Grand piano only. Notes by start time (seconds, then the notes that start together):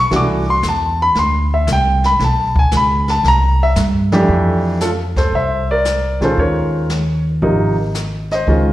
0.00 C#6
0.11 E3 A3 D4 F#4
0.16 D6
0.50 C6
0.69 A5
1.02 B5
1.19 C6
1.54 E5
1.73 G5
2.06 B5
2.24 A5
2.59 G#5
2.77 B5
3.10 A5
3.28 A#5
3.63 E5
4.12 F2 E3 A3 D4 G4
4.81 F4 A4
5.17 A4 C5
5.35 C5 E5
5.71 A#4 D5
6.21 D#3 G#3 C#4 F4 A4 C5
6.39 A#4 C#5
7.42 C3 F3 A#3 D#4
8.32 C5 D#5
8.48 D#3 G#3 C#4 F4